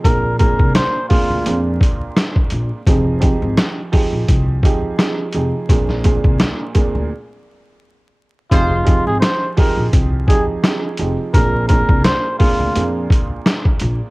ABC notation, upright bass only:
X:1
M:4/4
L:1/16
Q:"Swing 16ths" 1/4=85
K:Fdor
V:1 name="Upright bass" clef=bass
B,,,3 C,, z3 D,, F,,2 z4 B,,, z | F,,,3 A,,, z3 B,,, C,,2 z4 F,,, z | B,,,3 C,, z3 D,, z8 | F,,,3 A,,, z3 B,,, C,,2 z4 F,,, z |
B,,,3 C,, z3 D,, F,,2 z4 B,,, z |]